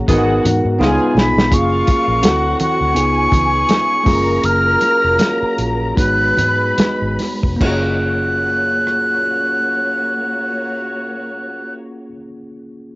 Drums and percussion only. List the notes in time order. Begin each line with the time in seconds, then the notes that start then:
0.08 kick, closed hi-hat, low conga
0.45 closed hi-hat, muted conga, low conga
0.81 snare, high conga
1.17 snare, high conga
1.38 snare
1.52 kick, closed hi-hat, muted conga
1.87 kick, closed hi-hat, muted conga
2.23 snare, closed hi-hat, high conga
2.60 closed hi-hat, low conga
2.96 closed hi-hat
3.32 kick, closed hi-hat, muted conga, low conga
3.69 snare, closed hi-hat, high conga
4.06 kick, snare, open hi-hat, high conga
4.43 closed hi-hat
4.81 closed hi-hat, muted conga
5.19 snare, closed hi-hat, high conga
5.58 closed hi-hat
5.97 kick, closed hi-hat
6.37 closed hi-hat, muted conga, low conga
6.78 snare, closed hi-hat, high conga
7.19 snare, open hi-hat, high conga
7.43 kick
7.61 kick, crash, muted conga
8.87 cross-stick